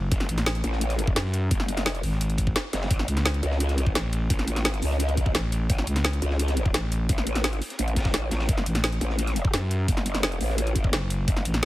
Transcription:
Already playing: F#1
0.11 F#1, kick, closed hi-hat, ride
0.20 snare
0.29 A1, closed hi-hat, ride
0.38 snare, closed hi-hat
0.46 snare, closed hi-hat, ride
0.55 closed hi-hat
0.64 A1, closed hi-hat, ride
0.72 snare
0.81 closed hi-hat, ride
0.90 snare, closed hi-hat
0.99 closed hi-hat, ride
1.07 kick
1.16 F#2, snare, closed hi-hat, ride
1.25 snare
1.33 closed hi-hat, ride
1.51 F#1, kick, closed hi-hat, ride
1.60 snare, ride
1.68 closed hi-hat, ride
1.77 snare, closed hi-hat
1.86 snare, closed hi-hat, ride
1.95 snare, closed hi-hat
2.03 G#1, open hi-hat, ride
2.12 snare
2.21 closed hi-hat, ride
2.30 closed hi-hat
2.38 kick, closed hi-hat, ride
2.47 kick
2.56 snare, closed hi-hat, ride
2.73 F#1, snare, closed hi-hat, ride
2.82 snare, ride
2.91 A1, kick, closed hi-hat, ride
2.99 snare
3.08 C#2, closed hi-hat, ride
3.17 snare, closed hi-hat
3.25 snare, closed hi-hat, ride
3.34 closed hi-hat
3.43 C#2, closed hi-hat, ride
3.51 snare
3.60 closed hi-hat, ride
3.69 snare, closed hi-hat
3.78 closed hi-hat, ride
3.87 kick
3.95 A1, snare, closed hi-hat, ride
4.03 snare
4.12 closed hi-hat, ride
4.30 A1, kick, closed hi-hat, ride
4.39 snare, ride
4.47 closed hi-hat, ride
4.56 snare, closed hi-hat
4.64 snare, closed hi-hat, ride
4.73 snare, closed hi-hat
4.82 C#2, open hi-hat, ride
4.91 snare
4.99 closed hi-hat, ride
5.09 closed hi-hat
5.17 kick, closed hi-hat, ride
5.26 kick
5.34 A1, snare, closed hi-hat, ride
5.44 ride
5.52 closed hi-hat, ride
5.69 A1, kick, closed hi-hat, ride
5.78 snare
5.87 C#2, closed hi-hat, ride
5.96 snare, closed hi-hat
6.04 snare, closed hi-hat, ride
6.13 closed hi-hat
6.22 C#2, closed hi-hat, ride
6.31 snare
6.39 closed hi-hat, ride
6.48 snare, closed hi-hat
6.57 closed hi-hat, ride
6.66 kick
6.74 A1, snare, closed hi-hat, ride
6.83 snare
6.92 closed hi-hat, ride
7.09 A1, kick, closed hi-hat, ride
7.17 snare, ride
7.27 closed hi-hat, ride
7.35 snare, closed hi-hat
7.44 snare, closed hi-hat, ride
7.53 snare, closed hi-hat
7.62 open hi-hat, ride
7.70 snare, closed hi-hat
7.78 A1, closed hi-hat, ride
7.88 closed hi-hat
7.96 kick, snare, closed hi-hat, ride
8.00 snare, ride
8.05 kick, snare, ride
8.14 snare, closed hi-hat, ride
8.31 A1, snare, closed hi-hat, ride
8.40 snare, ride
8.49 F#1, kick, closed hi-hat, ride
8.58 snare
8.66 A1, closed hi-hat, ride
8.74 snare, closed hi-hat
8.84 snare, closed hi-hat, ride
8.92 closed hi-hat
9.01 A1, closed hi-hat, ride
9.10 snare
9.19 closed hi-hat, ride
9.27 snare, closed hi-hat
9.36 closed hi-hat, ride
9.45 kick
9.53 F#2, snare, closed hi-hat, ride
9.62 snare
9.70 closed hi-hat, ride
9.88 F#1, kick, closed hi-hat, ride
9.97 snare, ride
10.06 closed hi-hat, ride
10.15 snare, closed hi-hat
10.23 snare, closed hi-hat, ride
10.32 snare, closed hi-hat
10.40 A1, open hi-hat, ride
10.50 snare
10.58 closed hi-hat, ride
10.67 closed hi-hat
10.76 kick, closed hi-hat, ride
10.84 kick
10.93 F#1, snare, closed hi-hat, ride
11.02 ride
11.10 closed hi-hat, ride
11.28 F#1, kick, closed hi-hat, ride
11.37 snare
11.45 A1, closed hi-hat, ride
11.54 snare, closed hi-hat

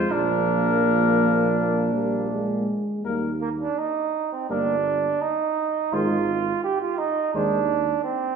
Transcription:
Already playing: F4 C5
0.10 A#1 F3 A#3 D4 A#4
0.85 F3
1.94 G3
2.31 G#3
3.05 D#2 G3 A#3 A#4
3.41 A#3
3.61 D4
3.78 D#4
4.32 C4
4.50 G1 G3 A#3 D4 A#4
5.21 D#4
5.92 G#1 D#3 G#3 F4 C5
6.64 G4
6.82 F4
6.98 D#4
7.34 D#2 D#3 G#3 D4 C5
8.04 C4

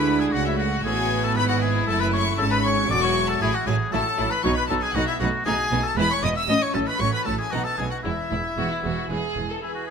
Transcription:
Already playing: D2 D3 G#3 D4 E4 G#4 B4 B5
0.20 G#4 G#5
0.32 C#2 C#3 A3 F#4 F#5
0.45 E4 E5
0.58 F#4 F#5
0.84 A1 A2 B3 C#4 E4 G#4 A4 G#5
1.23 A4 A5
1.36 G#1 G#2 C#4 E4 A4 B4 B5
1.49 F#4 F#5
1.61 G#4 G#5
1.87 F#1 F#2 A3 A4 A5
2.00 B4 B5
2.13 C#5 C#6
2.38 G#1 G#2 G#3 C#4 F#4 A4 A5
2.51 B4 B5
2.65 C#5 C#6
2.90 E1 E2 F#3 C#4 F#4 A4 D5 D6
3.02 C#5 C#6
3.27 A4 A5
3.41 A1 A2 F#3 E4 G#4 G#5
3.54 F#4 F#5
3.66 A1 A2 F#3 E4 G#4 G#5
3.92 A1 A2 F#3 C#4 E4 F#4 A4 A5
4.18 A1 A2 F#3 E4
4.30 B4 B5
4.43 B1 B2 F#3 B3 D#4 F#4 C#5 C#6
4.55 B4 B5
4.68 B1 B2 F#3 D#4 A4 A5
4.81 G#4 G#5
4.94 B1 B2 A3 D#4 F#4 F#5
5.06 E4 E5
5.19 B1 B2 A3 D#4 F#4 F#5
5.45 B1 B2 A3 D#4 F#4 G#4 G#5
5.71 B1 B2 A3 D#4
5.83 A4 A5
5.96 E1 E2 G#3 E4 G#4 B4 B5
6.11 C#5 C#6
6.22 E1 E2 G#3 E4 D#5 D#6
6.36 E5 E6
6.47 A1 A2 F#3 C#4 D#5 D#6
6.61 C#5 C#6
6.73 A1 A2 F#3 C#4 A4 A5
6.86 B4 B5
6.98 A1 A2 F#3 A3 C#4 F#4 C#5 C#6
7.12 B4 B5
7.24 A1 A2 F#3 C#4 A4 A5
7.38 G#4 G#5
7.50 B1 B2 A3 B3 D#4 F#4 F#5
7.64 A4 A5
7.77 B1 B2 A3 D#4 G#4 G#5
7.90 F#4 F#5
8.03 E1 E2 G#3 E4 E5
8.31 E1 E2 G#3 E4
8.57 E1 E2 G#3 B3 E4 F#4
8.71 E4
8.83 E1 E2 G#3 F#4
9.10 E1 E2 G#3 B3 E4 G#4
9.36 E1 E2 G#3
9.51 A4
9.62 E2 E3 E4 G#4 B5
9.74 F#4
9.87 G#4

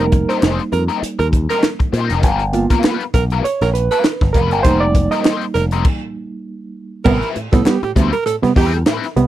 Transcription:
Already playing: F1 G3 A#3 D#4
0.00 A#4
0.12 muted overdriven electric guitar stroke, kick, closed hi-hat
0.29 G3 C4 D#4 A#4 C5, snare, closed hi-hat
0.41 F1 G3 C4 D#4 C5, snare, clap
0.59 closed hi-hat
0.72 F2 A#4, muted overdriven electric guitar stroke, closed hi-hat
0.88 G3 C4 D#4 A#4, closed hi-hat
1.02 muted overdriven electric guitar stroke, muted picked electric bass stroke, closed hi-hat
1.19 D#2 A#4, muted overdriven electric guitar stroke, closed hi-hat
1.33 kick, closed hi-hat
1.49 G3 C4 D#4 A#4, snare, closed hi-hat
1.63 muted overdriven electric guitar stroke, snare, clap
1.80 muted overdriven electric guitar stroke, kick, closed hi-hat
1.93 A#2 G3 C4 D#4 C5, closed hi-hat
2.09 F1 G3 C4 D#4 A#4, snare, closed hi-hat
2.23 G1 G3 B3 F4 A#4, kick, closed hi-hat
2.39 closed hi-hat
2.53 A#3 B3 F4, muted overdriven electric guitar stroke, closed hi-hat
2.70 G3 B3 F4 A#4, kick, snare, closed hi-hat
2.84 G3 B3 F4 B4, snare, clap
3.00 closed hi-hat
3.14 B1 A#4, muted overdriven electric guitar stroke, kick, snare, closed hi-hat
3.30 G3 B3 F4 A#4, closed hi-hat
3.44 C#5, muted overdriven electric guitar stroke, closed hi-hat
3.61 A#1 A#4, muted overdriven electric guitar stroke, snare, closed hi-hat
3.74 B4, closed hi-hat
3.91 G3 B3 F4 A#4 B4, closed hi-hat
4.04 muted overdriven electric guitar stroke, snare, clap
4.21 G1, muted overdriven electric guitar stroke, kick, snare
4.33 F1 G3 B3 F4 A#4 B4, kick, closed hi-hat
4.51 G1 G3 B3 F4 A#4, closed hi-hat
4.63 F1 G3 A#3 C4 D#4 A#4 C5, kick, closed hi-hat
4.80 D5
4.95 muted overdriven electric guitar stroke, kick, closed hi-hat
5.11 G3 C4 D#4 A#4 D#5, snare, closed hi-hat
5.25 G3 C4 D#4 C5, snare, clap
5.41 closed hi-hat
5.54 F1 A#4, muted overdriven electric guitar stroke, snare, closed hi-hat
5.71 G3 C4 D#4 A#4, closed hi-hat
5.85 kick, crash
7.05 A1 C3 G3 B3 C4 E4 A#4 B4, kick, crash
7.22 closed hi-hat
7.36 A2, muted picked electric bass stroke, closed hi-hat
7.52 A2 C3 G3 B3 A4, muted overdriven electric guitar stroke, kick, snare, closed hi-hat
7.66 G3 B3 G4, snare, clap
7.83 A2 G4, muted picked electric bass stroke, muted overdriven electric guitar stroke, closed hi-hat
7.96 D2 G3 B3 C4 E4 C5, kick, snare, closed hi-hat
8.13 A#4, muted overdriven electric guitar stroke, closed hi-hat
8.26 A2 A4, muted overdriven electric guitar stroke, closed hi-hat
8.43 C3 G3 B3, muted overdriven electric guitar stroke, muted picked electric bass stroke, snare, closed hi-hat
8.56 E2 G3 C4 E4 G4 B4, kick, open hi-hat
8.74 muted overdriven electric guitar stroke, closed hi-hat
8.86 A2 G3 C4 E4 B4, snare, clap
9.04 snare, closed hi-hat
9.16 C2 C3 G3 B3, muted overdriven electric guitar stroke, closed hi-hat

